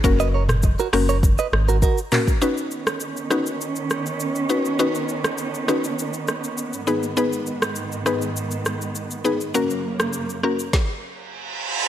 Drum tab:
HH |------o-------o-|----------------|----------------|----------------|
SH |xx-xxx-xxx-xxxxx|xxxxxxxxxxxxxxxx|xxxxxxxxxxxxxxxx|xxxxxxxxxxxxxxxx|
CP |--------------x-|----------------|----------------|----------------|
SD |---r--r---r-----|---r--r---r-----|---r--r---r-----|---r--r---r-----|
T2 |---o----------o-|----------------|----------------|----------------|
BD |o---o---o---o--o|----------------|----------------|----------------|

HH |----------------|
SH |xx-xxx-x--------|
CP |----------------|
SD |---r--r-o-------|
T2 |----------------|
BD |--------o-------|